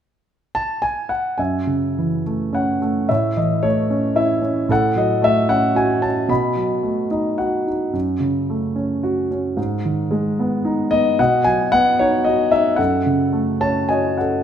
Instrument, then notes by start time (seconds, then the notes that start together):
grand piano
0.55 A5
0.82 G#5
1.09 F#5
1.38 F#2 E5 G#5
1.67 C#3
1.98 E3
2.26 A3
2.53 C#4 F#5
2.82 A3
3.09 A2 C#5 E5
3.37 E3 D#5
3.63 A3 C#5
3.90 C#4
4.15 E4 E5
4.42 C#4
4.69 A2 A4 F#5
4.96 F#3 D#5
5.22 A3 E5
5.48 C#4 F#5
5.75 F#4 G#5
6.02 C#4 A5
6.28 B2 D#5 B5
6.56 F#3
6.83 A3
7.11 D#4 D#5
7.38 F#4 F#5
7.67 D#4
7.93 F#2
8.20 C#3
8.49 A3
8.76 C#4
9.03 F#4
9.31 C#4
9.57 G#2
9.85 D#3
10.11 G#3
10.39 B3
10.65 D#4
10.91 B3 D#5
11.19 B2 D#5 F#5
11.44 F#3 G#5
11.72 B3 F#5
11.99 D#4 C#5
12.24 F#4 D#5
12.52 D#4 E5
12.76 F#2 A4 F#5
13.06 C#3
13.33 A3
13.60 C#4 C#5 A5
13.89 F#4 C#5 D#5 G#5
14.17 C#4 A4 F#5